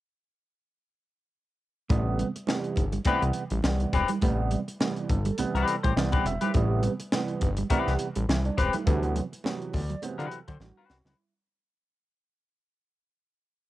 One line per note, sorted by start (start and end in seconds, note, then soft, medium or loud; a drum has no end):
1.89 2.24 A1 loud
1.89 2.26 C3 loud
1.89 2.26 E3 medium
1.89 2.26 G3 medium
1.89 2.00 A3 medium
1.89 2.26 B3 loud
1.89 kick loud
1.89 closed hi-hat medium
1.89 muted conga medium
2.19 2.29 G3 medium
2.19 closed hi-hat medium
2.36 muted clean electric guitar stroke soft
2.36 closed hi-hat medium
2.47 2.84 C3 medium
2.47 2.84 E3 medium
2.47 2.84 G3 medium
2.47 2.58 A3 medium
2.47 2.84 B3 medium
2.47 snare loud
2.47 high conga medium
2.64 closed hi-hat soft
2.76 2.99 G1 medium
2.76 muted clean electric guitar stroke soft
2.76 kick medium
2.76 closed hi-hat medium
2.76 muted conga medium
2.92 3.01 G3 medium
2.92 closed hi-hat medium
3.05 3.12 C2 medium
3.05 3.42 C3 medium
3.05 3.42 E3 medium
3.05 3.42 G3 medium
3.05 3.16 A3 medium
3.05 3.43 B3 loud
3.05 3.21 C4 medium
3.05 3.22 G4 medium
3.05 3.22 B4 loud
3.05 kick loud
3.05 closed hi-hat loud
3.05 muted conga medium
3.22 3.32 C2 medium
3.22 closed hi-hat soft
3.33 muted clean electric guitar stroke soft
3.33 closed hi-hat medium
3.50 3.61 A1 loud
3.50 3.59 G3 medium
3.50 closed hi-hat soft
3.62 3.86 C2 medium
3.62 4.00 C3 medium
3.62 4.00 E3 medium
3.62 3.74 E3 medium
3.62 4.00 G3 medium
3.62 4.00 B3 medium
3.62 snare loud
3.62 high conga medium
3.79 muted clean electric guitar stroke medium
3.79 closed hi-hat soft
3.79 high conga medium
3.93 4.05 E1 loud
3.93 4.08 C4 medium
3.93 4.09 G4 loud
3.93 4.09 B4 medium
3.93 kick medium
3.93 closed hi-hat medium
4.08 4.17 G3 medium
4.08 closed hi-hat medium
4.08 high conga medium
4.21 4.56 A1 loud
4.21 4.58 C3 loud
4.21 4.58 E3 medium
4.21 4.59 G3 medium
4.21 4.32 A3 medium
4.21 4.59 B3 loud
4.21 kick loud
4.21 closed hi-hat medium
4.21 muted conga medium
4.51 4.61 G3 medium
4.51 closed hi-hat medium
4.68 muted clean electric guitar stroke soft
4.68 closed hi-hat soft
4.80 5.16 C3 medium
4.80 5.16 E3 medium
4.80 5.17 G3 medium
4.80 4.91 A3 medium
4.80 5.17 B3 medium
4.80 snare loud
4.80 high conga medium
4.96 closed hi-hat soft
5.09 5.31 G1 medium
5.09 5.37 A4 medium
5.09 muted clean electric guitar stroke soft
5.09 kick medium
5.09 closed hi-hat medium
5.09 muted conga medium
5.25 5.34 G3 medium
5.25 closed hi-hat medium
5.38 5.45 C2 soft
5.38 5.74 C3 medium
5.38 5.75 E3 medium
5.38 5.75 G3 medium
5.38 5.48 A3 medium
5.38 5.75 B3 loud
5.38 5.66 B4 medium
5.38 closed hi-hat loud
5.38 muted conga medium
5.38 low conga medium
5.54 5.64 C2 medium
5.54 5.75 C4 medium
5.54 5.75 G4 medium
5.54 5.74 B4 medium
5.54 muted clean electric guitar stroke soft
5.54 closed hi-hat soft
5.68 5.83 A4 medium
5.68 closed hi-hat medium
5.83 5.94 A1 loud
5.83 5.91 G3 medium
5.83 5.93 C4 soft
5.83 5.93 G4 medium
5.83 5.93 C5 medium
5.83 5.96 C5 medium
5.83 kick medium
5.83 closed hi-hat medium
5.96 6.18 C2 medium
5.96 6.32 C3 medium
5.96 6.32 E3 medium
5.96 6.07 E3 medium
5.96 6.33 G3 medium
5.96 6.33 B3 loud
5.96 6.24 D5 medium
5.96 snare loud
5.96 high conga medium
6.12 6.25 C4 medium
6.12 6.25 G4 medium
6.12 6.24 B4 medium
6.12 kick medium
6.12 closed hi-hat soft
6.12 high conga medium
6.25 6.37 E1 loud
6.25 6.53 E5 medium
6.25 muted clean electric guitar stroke soft
6.25 closed hi-hat medium
6.41 6.49 G3 medium
6.41 6.52 C4 soft
6.41 6.51 G4 medium
6.41 6.51 B4 medium
6.41 closed hi-hat medium
6.41 high conga medium
6.54 6.89 A1 loud
6.54 6.91 C3 loud
6.54 6.91 E3 loud
6.54 6.91 G3 medium
6.54 6.64 A3 medium
6.54 6.92 B3 loud
6.54 kick loud
6.54 closed hi-hat medium
6.54 muted conga soft
6.83 6.93 G3 medium
6.83 closed hi-hat medium
6.83 muted conga soft
7.00 muted clean electric guitar stroke soft
7.00 closed hi-hat medium
7.12 7.49 C3 medium
7.12 7.49 E3 medium
7.12 7.49 G3 medium
7.12 7.22 A3 medium
7.12 7.49 B3 loud
7.12 snare loud
7.12 high conga medium
7.28 closed hi-hat soft
7.41 7.64 G1 medium
7.41 muted clean electric guitar stroke medium
7.41 kick medium
7.41 closed hi-hat medium
7.41 muted conga medium
7.57 7.66 G3 medium
7.57 closed hi-hat medium
7.70 7.77 C2 medium
7.70 8.06 C3 loud
7.70 8.07 E3 medium
7.70 8.07 G3 loud
7.70 7.81 A3 medium
7.70 8.07 B3 loud
7.70 7.92 C4 medium
7.70 7.92 G4 medium
7.70 7.92 B4 medium
7.70 kick loud
7.70 closed hi-hat loud
7.70 muted conga soft
7.87 7.97 C2 medium
7.87 snare soft
7.99 muted clean electric guitar stroke soft
7.99 closed hi-hat medium
8.15 8.26 A1 medium
8.15 8.24 G3 medium
8.15 closed hi-hat medium
8.29 8.50 C2 medium
8.29 8.39 E3 medium
8.29 8.44 E4 medium
8.29 snare loud
8.29 high conga medium
8.45 8.57 D4 medium
8.45 muted clean electric guitar stroke soft
8.45 closed hi-hat soft
8.45 high conga medium
8.58 8.70 E1 medium
8.58 8.73 C4 medium
8.58 8.73 G4 medium
8.58 8.73 B4 medium
8.58 kick medium
8.58 closed hi-hat medium
8.73 8.82 G3 medium
8.73 9.01 A3 medium
8.73 closed hi-hat medium
8.73 high conga medium
8.86 9.21 D2 loud
8.86 9.22 C3 medium
8.86 9.22 E3 medium
8.86 9.23 F#3 medium
8.86 8.97 A3 medium
8.86 9.23 B3 loud
8.86 kick loud
8.86 closed hi-hat medium
8.86 muted conga medium
9.03 closed hi-hat soft
9.16 9.25 F#3 medium
9.16 closed hi-hat medium
9.16 muted conga soft
9.33 muted clean electric guitar stroke soft
9.33 closed hi-hat medium
9.44 9.80 C3 medium
9.44 9.80 E3 medium
9.44 9.81 F#3 medium
9.44 9.55 A3 medium
9.44 9.81 B3 loud
9.44 snare loud
9.44 high conga medium
9.62 closed hi-hat soft
9.73 9.96 D2 medium
9.73 10.01 D5 medium
9.73 muted clean electric guitar stroke soft
9.73 kick medium
9.73 open hi-hat medium
9.73 muted conga medium
9.90 9.98 F#3 medium
9.90 closed hi-hat medium
10.02 10.38 C3 loud
10.02 10.39 E3 medium
10.02 10.39 F#3 medium
10.02 10.12 A3 medium
10.02 10.39 B3 loud
10.02 10.30 C5 medium
10.02 closed hi-hat loud
10.02 muted conga medium
10.02 low conga medium
10.18 10.28 D3 loud
10.18 10.38 C4 medium
10.18 10.38 F#4 medium
10.18 10.38 B4 medium
10.18 muted clean electric guitar stroke soft
10.18 closed hi-hat soft
10.32 10.59 A4 medium
10.32 closed hi-hat medium
10.48 10.58 D3 loud
10.48 10.55 F#3 medium
10.48 10.58 C4 soft
10.48 10.57 F#4 soft
10.48 10.57 C5 medium
10.48 kick medium
10.48 closed hi-hat medium
10.60 10.72 A1 medium
10.60 10.70 E3 medium
10.60 10.88 D4 medium
10.60 10.89 F#4 medium
10.60 snare medium
10.60 high conga medium
10.76 10.97 C4 medium
10.76 10.96 F#4 medium
10.76 10.96 B4 medium
10.76 high conga medium
10.90 11.02 C2 medium
10.90 11.05 F#4 medium
10.90 muted clean electric guitar stroke soft
10.90 snare medium
11.05 11.15 C#2 medium
11.05 11.14 F#3 medium
11.05 11.16 C4 soft
11.05 11.34 E4 medium
11.05 11.16 F#4 medium
11.05 11.15 B4 medium
11.05 snare medium
11.05 high conga medium